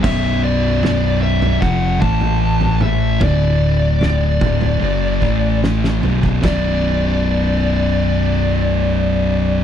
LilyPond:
<<
  \new Staff \with { instrumentName = "Lead electric guitar" } { \time 4/4 \key b \minor \tempo 4 = 74 e''8 d''4 e''8 fis''8 a''4 e''8 | d''2. r4 | d''1 | }
  \new Staff \with { instrumentName = "Distorted electric guitar" } { \clef bass \time 4/4 \key b \minor <b,, fis, b,>2 <eis, c eis>8 <a, e a>4. | <d, a, d>4. <d, a, d>8 <fis, cis fis>8 <a, e a>4 <b,, fis, b,>8 | <b,, fis, b,>1 | }
  \new Staff \with { instrumentName = "Distorted electric guitar" } { \clef bass \time 4/4 \key b \minor <b,, fis, b,>2 <eis, c eis>8 <a, e a>4. | <d, a, d>4. <d, a, d>8 <fis, cis fis>8 <a, e a>4 <b,, fis, b,>8 | <b,, fis, b,>1 | }
  \new Staff \with { instrumentName = "Fingered electric bass" } { \clef bass \time 4/4 \key b \minor b,,,2 eis,,8 a,,4. | d,,4. d,,8 fis,,8 a,,4 b,,,8 | b,,,1 | }
  \new DrumStaff \with { instrumentName = "Drums" } \drummode { \time 4/4 <cymc bd tomfh>4 <sn tomfh>8. tomfh16 bd8 <bd tomfh>16 toml16 r16 tomfh16 toml8 | <bd tomfh>4 <sn tomfh>8 <bd toml>16 tomfh16 tommh8 bd8 sn16 sn16 tomfh16 bd16 | <cymc bd sn>4 r4 r4 r4 | }
>>